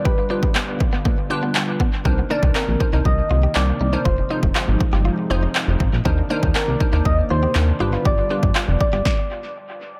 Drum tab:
CP |----x-------x---|----x-------x---|----x-------x---|----x-------x---|
SD |----------------|----------------|----------------|----------------|
BD |o--o--o-o-----o-|o--o--o-o-------|o--o--o-------o-|o--o--o-o-------|

CP |----x-----------|
SD |--------o-------|
BD |o--o--o-o-------|